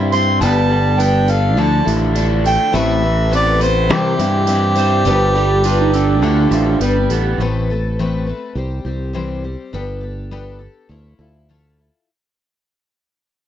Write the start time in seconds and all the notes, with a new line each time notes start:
Already playing: G2 C3 G3 C4 E4 C5
0.12 G3 C4 E4 C5 C6, tambourine
0.41 G1 G3 B3 D4 G4 A4 A5, tambourine
0.69 G3 D4 G4 A4
0.98 B3 D4 G4 A4 G5, tambourine
1.26 D4 G4 A4 F5, tambourine
1.57 D2 D3 F3 A3 D4 E4 A4 A5, tambourine
1.85 A1 F3 A3 D4 E4 A4, tambourine
2.15 A3 D4 E4 A4, tambourine
2.44 A3 D4 E4 A4 G5, tambourine
2.73 A1 A2 E3 A3 C4 A4 B4 E5, tambourine
3.02 E3 A3 C4 A4 B4
3.29 A3 B3 C4 A4 B4, tambourine
3.35 D5
3.59 A3 C4 E4 A4 B4 C5, tambourine
3.89 C2 C3 E3 G3 C4 E4 C5, tambourine
3.93 G4
4.18 G2 E3 G3 C4 E4 C5, tambourine
4.47 G3 C4 E4 C5, tambourine
4.76 G3 C4 E4 C5, tambourine
5.05 G1 G3 B3 D4 G4 A4, tambourine
5.35 G3 D4 G4 A4, tambourine
5.64 B3 D4 F4 G4 A4, tambourine
5.81 D#4
5.93 D4 G4 A4, tambourine
6.22 D2 D3 A3 E4 F4 A4, tambourine
6.51 A1 F3 E4 F4 A4, tambourine
6.80 G1 G3 B3 D4 G4, tambourine
6.84 A4
7.09 A1 B3 D4 G4 A4, tambourine
7.38 A1 A2 E3 A3 C4 A4
7.42 B4
7.70 A3 C4 A4 B4
7.99 A2 E3 A3 C4 A4 B4
8.26 A3 C4 A4 B4
8.55 C2 G3 C4 G4 C5
8.85 C2 G3 C4 G4 C5
9.13 C3 E3 G3 C4 G4 C5
9.44 G3 C4 G4 C5
9.73 G1 G3 B3 D4 G4 A4
10.01 D4 G4 A4
10.31 G3 B3 D4 G4 A4
10.59 D4 G4 A4
10.89 D2 A3 E4 F4 A4
11.19 D2 E4 F4 A4
11.49 D3 A3 E4 F4 A4
11.79 E4 F4 A4